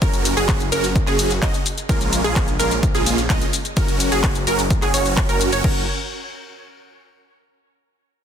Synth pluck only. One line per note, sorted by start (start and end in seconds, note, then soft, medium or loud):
0.02 0.34 A#4 loud
0.37 0.61 G#4 loud
0.72 0.87 A#4 loud
1.07 1.31 G#4 loud
1.42 1.57 D#5 loud
1.89 2.22 A#4 loud
2.24 2.48 G#4 loud
2.59 2.74 A#4 loud
2.95 3.18 G#4 medium
3.30 3.45 D#5 loud
3.77 4.09 A#4 loud
4.12 4.36 G#4 loud
4.47 4.62 A#4 loud
4.82 4.92 G#4 loud
4.94 5.26 C#5 medium
5.29 5.50 A#4 loud
5.53 5.62 C#5 loud
5.64 5.82 A#4 loud